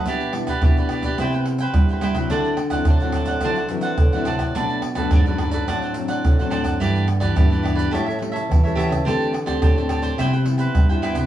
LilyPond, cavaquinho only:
\new Staff \with { instrumentName = "Cavaquinho" } { \time 4/4 \key d \mixolydian \tempo 4 = 107 <e' g' b' d''>8 r16 <g' b' d''>16 <e' g' b' d''>16 <g' b' d''>16 <e' g' b' d''>16 <g' b' d''>16 <e' b' c'' g''>16 <b' c'' g''>16 r16 <b' c'' g''>8 <b' c'' g''>16 <e' b' c'' g''>16 <b' c'' g''>16 | <d' c'' d'' fis''>8 r16 <c'' d'' fis''>16 <d' c'' d'' fis''>16 <c'' d'' fis''>16 <d' c'' d'' fis''>16 <c'' d'' fis''>16 <d' c'' d'' fis''>16 <c'' d'' fis''>16 r16 <c'' d'' fis''>8 <c'' d'' fis''>16 <d' c'' d'' fis''>16 <c'' d'' fis''>16 | <d' a' b' d''>8 r16 <a' b' d''>16 <d' a' b' d''>16 <a' b' d''>16 <d' a' b' d''>16 <a' b' d''>16 <d' c'' d'' fis''>16 <c'' d'' fis''>16 r16 <c'' d'' fis''>8 <c'' d'' fis''>16 <d' c'' d'' fis''>16 <c'' d'' fis''>16 | <e' g' b' d''>8 r16 <g' b' d''>16 <e' g' b' d''>16 <g' b' d''>16 <e' g' b' d''>16 <g' b' d''>16 <g' a' cis'' e''>16 <a' cis'' e''>16 r16 <a' cis'' e''>8 <a' cis'' e''>16 <g' a' cis'' e''>16 <a' cis'' e''>16 |
<d' g' c'' d''>8 r16 <g' c'' d''>16 <d' g' c'' d''>16 <g' c'' d''>16 <d' g' c'' d''>16 <g' c'' d''>16 <e' b' c'' g''>16 <b' c'' g''>16 r16 <b' c'' g''>8 <b' c'' g''>16 <e' b' c'' g''>16 <b' c'' g''>16 | }